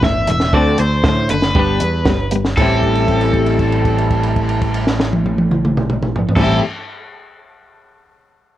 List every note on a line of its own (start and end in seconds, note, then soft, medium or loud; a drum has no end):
0.02 0.26 G1 medium
0.02 0.26 A2 medium
0.02 0.26 E3 medium
0.02 0.28 E5 medium
0.02 kick loud
0.02 snare loud
0.27 0.53 E1 medium
0.27 0.51 A2 medium
0.27 0.52 E3 medium
0.27 0.55 E5 medium
0.27 closed hi-hat medium
0.40 snare medium
0.53 0.77 D2 medium
0.53 0.77 D3 medium
0.53 0.78 A3 medium
0.53 0.78 C4 loud
0.53 0.78 D5 loud
0.53 kick loud
0.78 1.03 D2 medium
0.78 1.02 D3 medium
0.78 1.02 A3 medium
0.78 1.04 C5 medium
0.78 closed hi-hat medium
1.04 1.28 A2 medium
1.04 1.28 D3 medium
1.04 1.28 A3 medium
1.04 1.30 C5 medium
1.04 kick loud
1.04 snare loud
1.29 1.54 F#1 medium
1.29 1.53 D3 medium
1.29 1.54 A3 medium
1.29 2.29 B4 medium
1.29 closed hi-hat medium
1.42 snare medium
1.55 1.79 G1 medium
1.55 1.79 G3 medium
1.55 1.80 B3 medium
1.55 1.80 D4 medium
1.55 kick loud
1.80 2.05 E2 medium
1.80 2.04 G3 medium
1.80 2.04 B3 medium
1.80 closed hi-hat medium
2.06 2.54 G1 medium
2.06 2.30 G3 medium
2.06 2.30 B3 medium
2.06 kick loud
2.06 snare loud
2.31 2.56 G3 medium
2.31 2.56 B3 medium
2.31 closed hi-hat medium
2.45 snare medium
2.57 6.26 A1 medium
2.57 6.30 A2 medium
2.57 6.30 E3 medium
2.57 6.31 G3 medium
2.57 6.31 C4 loud
2.57 6.26 A4 medium
2.57 kick loud
2.57 crash medium
2.61 6.32 E4 medium
2.83 kick medium
2.83 crash soft
2.95 crash soft
3.08 kick medium
3.08 crash soft
3.21 crash soft
3.34 kick medium
3.34 crash soft
3.46 crash soft
3.59 kick medium
3.59 crash soft
3.72 crash soft
3.85 kick medium
3.85 crash soft
3.98 crash soft
4.10 kick medium
4.10 crash soft
4.23 crash soft
4.36 kick medium
4.36 crash soft
4.48 crash soft
4.61 kick medium
4.61 crash medium
4.74 crash medium
4.87 snare medium
4.99 snare medium
5.13 high tom medium
5.25 high tom medium
5.38 high tom medium
5.51 mid tom loud
5.65 mid tom loud
5.77 mid tom loud
5.89 mid tom medium
6.02 mid tom medium
6.16 floor tom medium
6.29 floor tom loud
6.36 6.58 A1 medium
6.36 6.59 A2 medium
6.36 6.60 E3 medium
6.36 6.60 G3 loud
6.36 6.61 C4 medium
6.36 6.58 A4 medium
6.36 kick loud
6.36 snare loud
6.36 crash loud
6.40 6.61 E4 loud